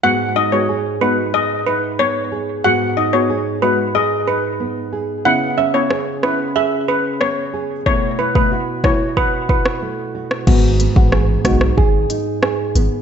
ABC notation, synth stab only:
X:1
M:4/4
L:1/16
Q:1/4=92
K:G#phr
V:1 name="Synth stab"
[G,B,F]3 [G,B,F] z2 [G,B,F] z8 z | [G,B,F]3 [G,B,F] z2 [G,B,F] z8 z | [B,CE]3 [B,CE] z2 [B,CE] z8 z | [A,B,E]3 [A,B,E] z2 [A,B,E] z8 z |
[G,B,F]3 [G,B,F] z2 [G,B,F] z8 z |]